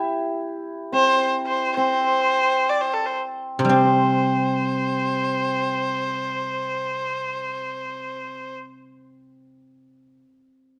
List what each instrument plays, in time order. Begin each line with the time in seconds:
Already playing: hammered dulcimer G3 E4 G4
0.92 hammered dulcimer C4, erhu C5
1.47 erhu C5
1.76 hammered dulcimer C4, erhu C5
2.70 erhu D5
2.81 erhu C5
2.94 erhu A4
3.06 erhu C5
3.59 guzheng C3
3.65 guzheng G3
3.69 guzheng C4, hammered dulcimer C4, erhu C5